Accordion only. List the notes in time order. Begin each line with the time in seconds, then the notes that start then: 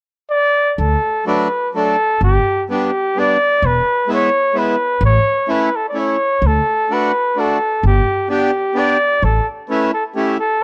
1.26 F#3 A3 D4
1.74 F#3 A3 D4
2.69 G3 B3 D4
3.16 G3 B3 D4
4.07 G#3 B3 E4
4.54 G#3 B3 E4
5.47 A3 C#4 E4
5.93 A3 C#4 E4
6.90 A3 D4 F#4
7.36 A3 D4 F#4
8.29 B3 D4 G4
8.74 B3 D4 G4
9.69 A3 C#4 E4
10.15 A3 C#4 E4